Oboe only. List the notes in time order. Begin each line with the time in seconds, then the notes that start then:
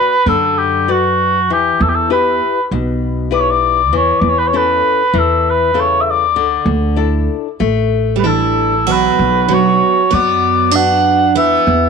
Already playing: B4
0.29 A4
0.58 G4
0.91 F#4
1.53 G4
1.82 A4
1.89 G4
1.95 A4
2.12 B4
3.34 D5
3.40 C#5
3.50 D5
3.97 C#5
4.19 D5
4.29 C#5
4.38 B4
4.47 C#5
4.57 B4
5.19 A4
5.50 B4
5.79 C#5
6.01 E5
6.10 D5
8.19 B4
8.27 A4
8.91 B4
9.53 C#5
10.14 D5
10.75 F#5
11.37 E5